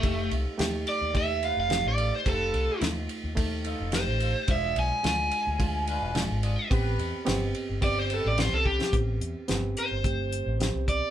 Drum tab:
RD |x-x-x-x-x-x-x-x-|x-x-x-x-x-x-x-x-|x-x-x-x-x-x-x-x-|x-x-x-x-x-x-x---|
HH |----------------|----------------|----------------|----------------|
SD |----o-------o---|----o-------o---|----o-------o---|----o-------o--o|
BD |o-------o-------|o-------o-------|o-------o-------|o-------o-----o-|

RD |----------------|
HH |x-x-x-x-x-x-x-x-|
SD |----o-------o---|
BD |o-------o-----o-|